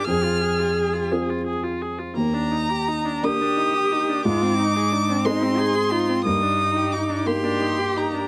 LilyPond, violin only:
\new Staff \with { instrumentName = "Violin" } { \time 6/8 \key ees \major \tempo 4. = 58 f'''4. r4. | bes''4. ees'''4. | d'''4. c'''4. | ees'''4 d'''8 c'''4 bes''8 | }